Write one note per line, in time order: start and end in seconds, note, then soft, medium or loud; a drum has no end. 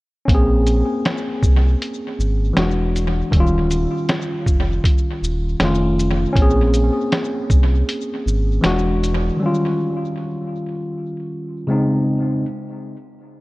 0.25 0.83 A#1 loud
0.25 2.52 A#3 medium
0.25 2.51 C#4 medium
0.25 kick loud
0.25 closed hi-hat medium
0.31 2.54 C4 medium
0.31 2.55 G#4 medium
0.67 closed hi-hat soft
0.67 shaker soft
1.05 snare loud
1.05 closed hi-hat medium
1.43 1.76 C2 medium
1.43 kick medium
1.43 shaker soft
1.82 closed hi-hat loud
2.19 2.52 G#1 medium
2.19 shaker soft
2.53 3.23 E1 medium
2.53 3.30 E3 medium
2.53 3.31 G#3 medium
2.53 3.32 D4 medium
2.53 snare medium
2.57 3.33 F#4 medium
2.57 closed hi-hat medium
2.96 closed hi-hat soft
2.96 shaker soft
3.31 3.87 D#1 loud
3.31 5.55 D#3 medium
3.31 5.57 G3 medium
3.31 kick medium
3.31 closed hi-hat medium
3.37 5.58 C#4 medium
3.37 5.60 F4 medium
3.71 closed hi-hat soft
3.71 shaker soft
4.09 snare loud
4.09 closed hi-hat medium
4.46 4.80 F1 medium
4.46 kick medium
4.46 shaker soft
4.84 kick loud
4.84 closed hi-hat loud
5.22 5.55 D#1 medium
5.22 shaker soft
5.60 6.26 F1 loud
5.60 6.36 D#3 medium
5.60 6.36 A3 medium
5.60 6.32 C#4 medium
5.60 snare loud
5.60 closed hi-hat medium
5.64 6.38 F4 medium
5.99 closed hi-hat soft
5.99 shaker soft
6.33 6.90 A#1 loud
6.33 8.60 A#3 medium
6.33 8.58 C#4 medium
6.33 kick loud
6.33 closed hi-hat medium
6.39 8.61 C4 medium
6.39 8.63 G#4 medium
6.74 closed hi-hat soft
6.74 shaker soft
7.12 snare loud
7.12 closed hi-hat medium
7.50 7.83 C2 medium
7.50 kick medium
7.50 shaker soft
7.89 closed hi-hat medium
8.26 8.59 G#1 loud
8.26 shaker medium
8.61 9.30 E1 medium
8.61 9.38 E3 medium
8.61 9.39 G#3 medium
8.61 9.40 D4 medium
8.61 snare medium
8.61 closed hi-hat medium
8.66 9.41 F#4 medium
9.04 closed hi-hat soft
9.04 shaker soft
9.37 11.62 D#3 medium
9.37 11.63 G3 medium
9.43 11.65 C#4 medium
9.43 11.66 F4 medium
11.67 12.43 C#3 medium
11.67 12.44 G#3 medium
11.67 12.44 C4 medium
11.71 12.45 D#4 medium